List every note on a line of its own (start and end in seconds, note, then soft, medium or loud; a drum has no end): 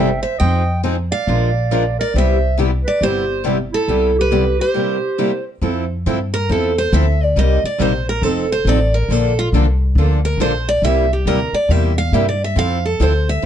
0.00 0.23 G1 medium
0.00 0.21 E5 medium
0.00 0.21 G5 medium
0.22 0.38 C5 medium
0.22 0.39 E5 medium
0.39 1.10 F2 medium
0.39 0.62 F3 medium
0.39 0.62 C4 medium
0.39 0.62 D#4 medium
0.39 0.63 G#4 medium
0.39 0.80 D#5 medium
0.39 0.81 G5 medium
0.83 0.95 F3 medium
0.83 0.95 C4 medium
0.83 0.95 D#4 medium
0.83 0.95 G#4 medium
1.12 1.95 D5 medium
1.12 2.00 F5 medium
1.27 1.97 A#1 medium
1.27 1.49 F3 medium
1.27 1.49 G#3 medium
1.27 1.49 D4 medium
1.27 1.49 F4 medium
1.27 1.50 A#4 medium
1.71 1.82 F3 medium
1.71 1.83 G#3 medium
1.71 1.83 D4 medium
1.71 1.83 F4 medium
1.71 1.83 A#4 medium
1.99 2.14 A#4 medium
1.99 2.16 D5 medium
2.14 2.84 C2 medium
2.14 2.37 C3 medium
2.14 2.37 G3 medium
2.14 2.37 B3 medium
2.14 2.37 E4 medium
2.14 2.37 G4 medium
2.14 2.56 C5 medium
2.18 2.57 E5 medium
2.58 2.69 C3 medium
2.58 2.70 G3 medium
2.58 2.70 B3 medium
2.58 2.70 E4 medium
2.58 2.70 G4 medium
2.84 3.00 B4 medium
2.84 3.03 D5 medium
3.01 3.71 G1 medium
3.01 3.23 C3 medium
3.01 3.24 G3 soft
3.01 3.24 B3 medium
3.01 3.24 E4 medium
3.01 3.42 G4 medium
3.01 3.24 G4 medium
3.01 3.43 C5 medium
3.44 3.56 C3 medium
3.44 3.56 G3 medium
3.44 3.56 B3 medium
3.44 3.56 E4 medium
3.44 3.56 G4 medium
3.73 4.15 E4 medium
3.73 4.15 A4 medium
3.88 4.58 C2 medium
3.88 4.10 C3 medium
3.88 4.10 G3 medium
3.88 4.10 B3 medium
3.88 4.10 E4 medium
3.88 4.11 G4 medium
4.19 4.57 G4 medium
4.19 4.58 B4 medium
4.32 4.43 C3 medium
4.32 4.43 G3 medium
4.32 4.43 B3 medium
4.32 4.44 E4 medium
4.32 4.44 G4 medium
4.59 5.42 G4 medium
4.59 5.43 C5 medium
4.74 4.96 C3 medium
4.74 4.96 G3 medium
4.74 4.96 A#3 medium
4.74 4.96 E4 medium
4.74 4.97 G4 medium
5.18 5.30 C3 medium
5.18 5.30 G3 medium
5.18 5.30 A#3 medium
5.18 5.30 E4 medium
5.18 5.30 G4 medium
5.62 6.04 F2 medium
5.62 5.83 F3 medium
5.62 5.84 C4 medium
5.62 5.84 E4 medium
5.62 5.84 A4 medium
6.06 6.48 G2 medium
6.06 6.17 F3 medium
6.06 6.18 C4 medium
6.06 6.18 E4 medium
6.06 6.18 A4 medium
6.34 6.49 A#4 medium
6.49 6.92 E2 medium
6.49 6.71 F3 medium
6.49 6.71 C4 medium
6.49 6.71 E4 medium
6.49 6.71 A4 medium
6.49 6.77 A4 medium
6.78 6.93 C5 medium
6.92 7.35 D2 medium
6.92 7.04 F3 medium
6.92 7.04 C4 medium
6.92 7.05 E4 medium
6.92 7.05 A4 loud
6.92 7.23 E5 medium
7.23 7.37 D5 medium
7.36 7.61 C2 medium
7.36 7.58 C3 medium
7.36 7.58 G3 medium
7.36 7.58 A#3 medium
7.36 7.58 D#4 medium
7.36 7.58 G4 medium
7.36 7.64 D#5 medium
7.64 7.80 D5 medium
7.64 muted upright bass stroke soft
7.79 8.21 A#1 medium
7.79 7.91 C3 medium
7.79 7.91 G3 loud
7.79 7.91 A#3 medium
7.79 7.92 D#4 medium
7.79 7.92 G4 loud
7.79 8.07 C5 medium
8.09 8.23 A#4 medium
8.22 8.64 F1 medium
8.22 8.45 F3 medium
8.22 8.45 C4 medium
8.22 8.45 D#4 medium
8.22 8.49 A4 medium
8.22 8.46 A4 medium
8.52 8.67 C5 medium
8.65 9.08 A1 medium
8.65 8.78 F3 medium
8.65 8.78 C4 medium
8.65 8.78 D#4 loud
8.65 8.79 A4 medium
8.65 8.94 D5 medium
8.94 9.12 A#4 medium
9.08 9.51 A#1 medium
9.08 9.31 D3 medium
9.08 9.32 F3 medium
9.08 9.32 A#3 medium
9.08 9.32 D4 medium
9.08 9.32 A4 medium
9.08 9.37 A4 medium
9.39 9.48 F4 medium
9.52 9.95 C2 medium
9.52 9.65 D3 medium
9.52 9.65 F3 medium
9.52 9.65 A#3 medium
9.52 9.65 D4 medium
9.52 9.66 A4 medium
9.95 10.37 D2 medium
9.95 10.19 D3 medium
9.95 10.19 F3 medium
9.95 10.19 A#3 medium
9.95 10.19 D4 medium
9.95 10.19 A4 medium
10.25 10.40 A#4 medium
10.37 10.81 A#1 medium
10.37 10.51 D3 medium
10.37 10.51 F3 medium
10.37 10.52 A#3 medium
10.37 10.52 D4 medium
10.37 10.52 A4 loud
10.41 10.67 C5 medium
10.69 10.84 D5 medium
10.82 11.25 C2 medium
10.82 11.05 C3 medium
10.82 11.05 G3 medium
10.82 11.05 A#3 medium
10.82 11.05 E4 medium
10.82 11.05 G4 medium
10.82 11.10 E5 medium
11.13 11.27 G4 soft
11.25 11.51 D2 medium
11.25 11.38 C3 medium
11.25 11.38 G3 medium
11.25 11.38 A#3 medium
11.25 11.38 E4 loud
11.25 11.38 G4 loud
11.25 11.53 A#4 medium
11.53 11.71 D5 medium
11.53 muted upright bass stroke soft
11.69 12.11 E2 medium
11.69 11.91 C3 medium
11.69 11.92 G3 medium
11.69 11.92 A#3 medium
11.69 11.92 E4 medium
11.69 11.92 G4 medium
11.69 11.97 E5 medium
11.98 12.15 F5 loud
12.12 12.55 G2 medium
12.12 12.24 C3 medium
12.12 12.25 G3 medium
12.12 12.25 A#3 medium
12.12 12.25 E4 medium
12.12 12.25 G4 loud
12.12 12.28 E5 medium
12.29 12.42 D5 medium
12.44 12.57 E5 medium
12.56 12.98 F2 medium
12.56 12.77 F3 medium
12.56 12.77 C4 medium
12.56 12.78 E4 medium
12.56 12.78 A4 medium
12.56 12.84 F5 medium
12.85 13.00 A4 medium
13.00 13.42 D2 medium
13.00 13.11 F3 medium
13.00 13.11 C4 medium
13.00 13.11 E4 medium
13.00 13.12 A4 medium
13.00 13.27 C5 medium
13.29 13.45 E5 medium
13.42 13.46 F3 medium
13.42 13.46 C4 medium
13.42 13.46 E4 medium